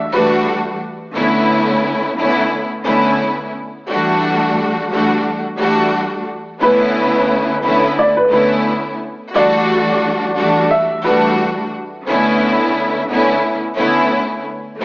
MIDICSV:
0, 0, Header, 1, 3, 480
1, 0, Start_track
1, 0, Key_signature, 2, "minor"
1, 0, Tempo, 681818
1, 822, Time_signature, 4, 2, 24, 8
1, 10453, End_track
2, 0, Start_track
2, 0, Title_t, "Upright piano"
2, 0, Program_c, 0, 0
2, 0, Note_on_c, 0, 76, 94
2, 75, Note_off_c, 0, 76, 0
2, 94, Note_on_c, 0, 71, 80
2, 313, Note_off_c, 0, 71, 0
2, 4664, Note_on_c, 0, 71, 96
2, 5595, Note_off_c, 0, 71, 0
2, 5624, Note_on_c, 0, 74, 89
2, 5740, Note_off_c, 0, 74, 0
2, 5750, Note_on_c, 0, 71, 82
2, 5850, Note_off_c, 0, 71, 0
2, 5863, Note_on_c, 0, 71, 74
2, 6078, Note_off_c, 0, 71, 0
2, 6587, Note_on_c, 0, 74, 92
2, 7516, Note_off_c, 0, 74, 0
2, 7538, Note_on_c, 0, 76, 93
2, 7756, Note_off_c, 0, 76, 0
2, 7776, Note_on_c, 0, 71, 76
2, 7995, Note_off_c, 0, 71, 0
2, 10453, End_track
3, 0, Start_track
3, 0, Title_t, "String section"
3, 0, Program_c, 1, 48
3, 91, Note_on_c, 1, 52, 105
3, 96, Note_on_c, 1, 55, 99
3, 100, Note_on_c, 1, 57, 96
3, 104, Note_on_c, 1, 62, 92
3, 109, Note_on_c, 1, 66, 112
3, 541, Note_off_c, 1, 52, 0
3, 544, Note_off_c, 1, 55, 0
3, 546, Note_off_c, 1, 57, 0
3, 548, Note_off_c, 1, 62, 0
3, 550, Note_off_c, 1, 66, 0
3, 809, Note_on_c, 1, 50, 106
3, 813, Note_on_c, 1, 57, 94
3, 818, Note_on_c, 1, 59, 92
3, 822, Note_on_c, 1, 61, 96
3, 827, Note_on_c, 1, 64, 113
3, 1483, Note_off_c, 1, 50, 0
3, 1485, Note_off_c, 1, 57, 0
3, 1487, Note_off_c, 1, 59, 0
3, 1490, Note_off_c, 1, 61, 0
3, 1492, Note_off_c, 1, 64, 0
3, 1529, Note_on_c, 1, 50, 101
3, 1534, Note_on_c, 1, 57, 88
3, 1538, Note_on_c, 1, 59, 85
3, 1542, Note_on_c, 1, 61, 86
3, 1546, Note_on_c, 1, 64, 113
3, 1874, Note_off_c, 1, 50, 0
3, 1877, Note_off_c, 1, 57, 0
3, 1879, Note_off_c, 1, 59, 0
3, 1881, Note_off_c, 1, 61, 0
3, 1883, Note_off_c, 1, 64, 0
3, 2001, Note_on_c, 1, 50, 101
3, 2006, Note_on_c, 1, 57, 97
3, 2011, Note_on_c, 1, 59, 87
3, 2015, Note_on_c, 1, 61, 91
3, 2020, Note_on_c, 1, 64, 108
3, 2457, Note_off_c, 1, 50, 0
3, 2459, Note_off_c, 1, 57, 0
3, 2461, Note_off_c, 1, 59, 0
3, 2464, Note_off_c, 1, 61, 0
3, 2466, Note_off_c, 1, 64, 0
3, 2733, Note_on_c, 1, 52, 103
3, 2739, Note_on_c, 1, 55, 92
3, 2742, Note_on_c, 1, 57, 93
3, 2747, Note_on_c, 1, 62, 97
3, 2750, Note_on_c, 1, 66, 112
3, 3405, Note_off_c, 1, 52, 0
3, 3408, Note_off_c, 1, 55, 0
3, 3409, Note_off_c, 1, 57, 0
3, 3412, Note_off_c, 1, 62, 0
3, 3413, Note_off_c, 1, 66, 0
3, 3453, Note_on_c, 1, 52, 98
3, 3456, Note_on_c, 1, 55, 94
3, 3460, Note_on_c, 1, 57, 93
3, 3466, Note_on_c, 1, 62, 89
3, 3470, Note_on_c, 1, 66, 102
3, 3796, Note_off_c, 1, 52, 0
3, 3798, Note_off_c, 1, 55, 0
3, 3800, Note_off_c, 1, 57, 0
3, 3803, Note_off_c, 1, 62, 0
3, 3805, Note_off_c, 1, 66, 0
3, 3930, Note_on_c, 1, 52, 103
3, 3935, Note_on_c, 1, 55, 96
3, 3939, Note_on_c, 1, 57, 93
3, 3944, Note_on_c, 1, 62, 93
3, 3949, Note_on_c, 1, 66, 113
3, 4381, Note_off_c, 1, 52, 0
3, 4383, Note_off_c, 1, 55, 0
3, 4385, Note_off_c, 1, 57, 0
3, 4388, Note_off_c, 1, 62, 0
3, 4390, Note_off_c, 1, 66, 0
3, 4648, Note_on_c, 1, 50, 100
3, 4653, Note_on_c, 1, 57, 91
3, 4657, Note_on_c, 1, 59, 94
3, 4662, Note_on_c, 1, 61, 92
3, 4667, Note_on_c, 1, 64, 108
3, 5322, Note_off_c, 1, 50, 0
3, 5325, Note_off_c, 1, 57, 0
3, 5327, Note_off_c, 1, 59, 0
3, 5329, Note_off_c, 1, 61, 0
3, 5332, Note_off_c, 1, 64, 0
3, 5371, Note_on_c, 1, 50, 100
3, 5375, Note_on_c, 1, 57, 87
3, 5379, Note_on_c, 1, 59, 86
3, 5383, Note_on_c, 1, 61, 90
3, 5388, Note_on_c, 1, 64, 105
3, 5715, Note_off_c, 1, 50, 0
3, 5717, Note_off_c, 1, 57, 0
3, 5719, Note_off_c, 1, 59, 0
3, 5721, Note_off_c, 1, 61, 0
3, 5724, Note_off_c, 1, 64, 0
3, 5841, Note_on_c, 1, 50, 96
3, 5845, Note_on_c, 1, 57, 99
3, 5850, Note_on_c, 1, 59, 90
3, 5854, Note_on_c, 1, 61, 88
3, 5858, Note_on_c, 1, 64, 104
3, 6296, Note_off_c, 1, 50, 0
3, 6298, Note_off_c, 1, 57, 0
3, 6301, Note_off_c, 1, 59, 0
3, 6303, Note_off_c, 1, 61, 0
3, 6305, Note_off_c, 1, 64, 0
3, 6574, Note_on_c, 1, 52, 99
3, 6577, Note_on_c, 1, 55, 91
3, 6582, Note_on_c, 1, 57, 91
3, 6586, Note_on_c, 1, 62, 98
3, 6591, Note_on_c, 1, 66, 120
3, 7245, Note_off_c, 1, 52, 0
3, 7247, Note_off_c, 1, 55, 0
3, 7249, Note_off_c, 1, 57, 0
3, 7251, Note_off_c, 1, 62, 0
3, 7254, Note_off_c, 1, 66, 0
3, 7291, Note_on_c, 1, 52, 99
3, 7296, Note_on_c, 1, 55, 95
3, 7301, Note_on_c, 1, 57, 92
3, 7305, Note_on_c, 1, 62, 91
3, 7310, Note_on_c, 1, 66, 98
3, 7636, Note_off_c, 1, 52, 0
3, 7638, Note_off_c, 1, 55, 0
3, 7640, Note_off_c, 1, 57, 0
3, 7642, Note_off_c, 1, 62, 0
3, 7645, Note_off_c, 1, 66, 0
3, 7769, Note_on_c, 1, 52, 101
3, 7772, Note_on_c, 1, 55, 100
3, 7777, Note_on_c, 1, 57, 97
3, 7782, Note_on_c, 1, 62, 96
3, 7786, Note_on_c, 1, 66, 111
3, 8220, Note_off_c, 1, 52, 0
3, 8222, Note_off_c, 1, 55, 0
3, 8224, Note_off_c, 1, 57, 0
3, 8227, Note_off_c, 1, 62, 0
3, 8229, Note_off_c, 1, 66, 0
3, 8490, Note_on_c, 1, 50, 99
3, 8493, Note_on_c, 1, 57, 97
3, 8498, Note_on_c, 1, 59, 94
3, 8502, Note_on_c, 1, 61, 95
3, 8507, Note_on_c, 1, 64, 112
3, 9163, Note_off_c, 1, 50, 0
3, 9165, Note_off_c, 1, 57, 0
3, 9167, Note_off_c, 1, 59, 0
3, 9169, Note_off_c, 1, 61, 0
3, 9172, Note_off_c, 1, 64, 0
3, 9210, Note_on_c, 1, 50, 97
3, 9215, Note_on_c, 1, 57, 86
3, 9219, Note_on_c, 1, 59, 88
3, 9224, Note_on_c, 1, 61, 89
3, 9228, Note_on_c, 1, 64, 110
3, 9555, Note_off_c, 1, 50, 0
3, 9557, Note_off_c, 1, 57, 0
3, 9559, Note_off_c, 1, 59, 0
3, 9562, Note_off_c, 1, 61, 0
3, 9564, Note_off_c, 1, 64, 0
3, 9681, Note_on_c, 1, 50, 98
3, 9684, Note_on_c, 1, 57, 93
3, 9689, Note_on_c, 1, 59, 89
3, 9693, Note_on_c, 1, 61, 89
3, 9698, Note_on_c, 1, 64, 108
3, 10136, Note_off_c, 1, 50, 0
3, 10138, Note_off_c, 1, 57, 0
3, 10140, Note_off_c, 1, 59, 0
3, 10142, Note_off_c, 1, 61, 0
3, 10145, Note_off_c, 1, 64, 0
3, 10414, Note_on_c, 1, 52, 104
3, 10419, Note_on_c, 1, 55, 93
3, 10423, Note_on_c, 1, 57, 95
3, 10428, Note_on_c, 1, 62, 95
3, 10453, Note_off_c, 1, 52, 0
3, 10453, Note_off_c, 1, 55, 0
3, 10453, Note_off_c, 1, 57, 0
3, 10453, Note_off_c, 1, 62, 0
3, 10453, End_track
0, 0, End_of_file